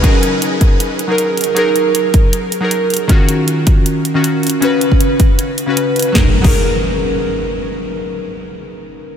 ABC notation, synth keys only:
X:1
M:4/4
L:1/16
Q:"Swing 16ths" 1/4=157
K:F#
V:1 name="Synth keys"
[F,DGA]8- [F,DGA]3 [F,DGA]4- [F,DGA] | [F,DGA]8- [F,DGA]3 [F,DGA]4- [F,DGA] | [D,CEF]8- [D,CEF]3 [D,CEF]3 z2 | [C,CFB]8- [C,CFB]3 [C,CFB]4- [C,CFB] |
[F,DGA] z2 [F,DGA]12- [F,DGA]- | [F,DGA]16 |]